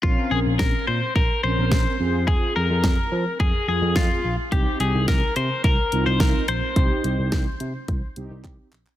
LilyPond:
<<
  \new Staff \with { instrumentName = "Clean electric guitar" } { \time 4/4 \key c \phrygian \tempo 4 = 107 f'8 aes'8 bes'8 c''8 bes'8 c''4. | aes'8 bes'4. aes'8 aes'8 f'8. r16 | g'8 aes'8 bes'8 c''8 bes'8. c''16 bes'8 c''8~ | c''2. r4 | }
  \new Staff \with { instrumentName = "Analog polysynth" } { \time 4/4 \key c \phrygian <c' des' bes'>4~ <c' des' bes'>16 r4 r16 <c' des' bes'>4 <c' f' aes'>8~ | <c' f' aes'>4 r4. <c' f' aes'>4 r8 | <c' ees' g'>4~ <c' ees' g'>16 r4 r16 <c' ees' f'>4 r8 | <c' ees' g'>4~ <c' ees' g'>16 r4 r16 <c' ees' g'>4 r8 | }
  \new Staff \with { instrumentName = "Tine electric piano" } { \clef bass \time 4/4 \key c \phrygian bes,,16 r16 bes,,16 bes,,16 bes,,16 r16 bes,16 r16 bes,,16 r16 bes,,16 bes,,16 bes,,16 r16 f,8~ | f,16 r16 f,16 f,16 f,16 r16 f16 r16 f,16 r16 f,16 f,16 f,16 r16 bes,,16 r16 | c,16 r16 c,16 c,16 c,16 r16 c16 r16 c,16 r16 c,16 c,16 c,16 r16 bes,,16 r16 | c,16 r16 c,16 c,16 c,16 r16 c16 r16 c,16 r16 c,16 c,16 c,16 r16 bes,,16 r16 | }
  \new DrumStaff \with { instrumentName = "Drums" } \drummode { \time 4/4 bd4 <bd sn>4 bd4 <bd sn>4 | bd4 <bd sn>4 bd4 <bd sn>4 | <hh bd>8 hh8 <hh bd sn>8 hh8 <hh bd>8 hh8 <hh bd sn>8 hh8 | <hh bd>8 hh8 <hh bd sn>8 hh8 <hh bd>8 hh8 <hc hh bd>8 <hc hh>16 hc16 | }
>>